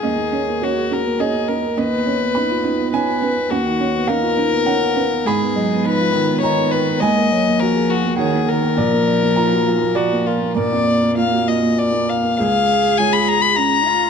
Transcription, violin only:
X:1
M:3/4
L:1/16
Q:1/4=103
K:Ebm
V:1 name="Violin"
A4 G2 B2 A2 B2 | =B8 B4 | ^F4 B8 | A4 c4 d2 c2 |
e4 B2 G2 A2 B2- | B8 G2 F2 | =d4 f2 e2 d2 f2 | f4 a c' b c' b4 |]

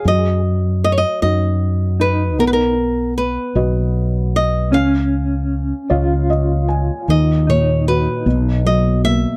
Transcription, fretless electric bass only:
X:1
M:6/8
L:1/8
Q:3/8=51
K:D#m
V:1 name="Fretless electric bass" clef=bass
F,,3 F,,3 | B,,,3 B,,,3 | C,,3 C,,3 | D,,3 B,,,3 |]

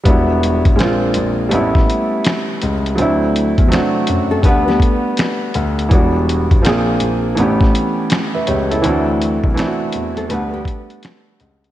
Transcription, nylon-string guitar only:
X:1
M:4/4
L:1/16
Q:"Swing 16ths" 1/4=82
K:D
V:1 name="Nylon-string guitar"
z16 | z6 z [=CA] [DB] [B,G]6 z | z16 | z6 z [=CA] [DB] [B,G]6 z |]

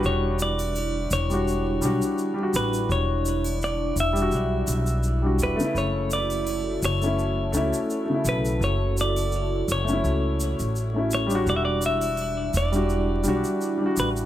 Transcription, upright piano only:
X:1
M:4/4
L:1/16
Q:"Swing 16ths" 1/4=84
K:Edor
V:1 name="Upright piano"
[G,DF]6- [G,DF] [G,DF]3 [G,DF]3 [G,DF]3- | [G,DF]6- [G,DF] [G,DF]6 [G,DF]2 [C,A,E]- | [C,A,E]6- [C,A,E] [A,CE]3 [A,CE]3 [C,A,E]3- | [C,A,E]6- [C,A,E] [A,CE]6 [A,CE]2 [G,DF]- |
[G,DF]6- [G,DF] [G,DF]3 [G,DF]3 [G,DF]3 |]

